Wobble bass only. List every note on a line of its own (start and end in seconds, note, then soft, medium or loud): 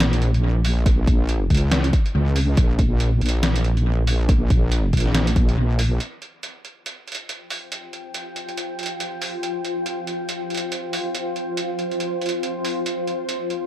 0.00 1.06 A#1 loud
1.08 1.49 A#1 loud
1.50 1.92 C#2 loud
2.15 2.56 C#2 loud
2.58 3.20 A#1 loud
3.22 4.49 A#1 loud
4.50 4.92 A#1 loud
4.93 5.56 A#1 loud
5.58 5.99 A#1 loud